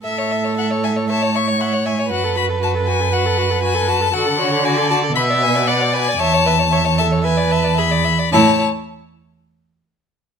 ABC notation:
X:1
M:4/4
L:1/16
Q:1/4=116
K:A
V:1 name="Violin"
e4 f2 g2 a2 c'2 f2 g2 | f2 b2 a2 g2 f4 g2 a2 | f4 g2 a2 b2 g2 f2 g2 | a6 a2 g2 a2 b4 |
a2 z12 z2 |]
V:2 name="Violin"
e c e c e c e c e c e c e c e c | F A F A F A F A F A F A F A F A | F A F A F A F A B d B d B d B d | e c e c e c e c e d e d e d e d |
c2 z12 z2 |]
V:3 name="Viola"
A8 c8 | B16 | A2 c2 d4 e4 d4 | c2 B2 c2 A2 B4 G2 z2 |
E2 z12 z2 |]
V:4 name="Cello" clef=bass
A,,16 | F,,16 | D,8 B,,8 | E,,12- E,,2 z2 |
A,,2 z12 z2 |]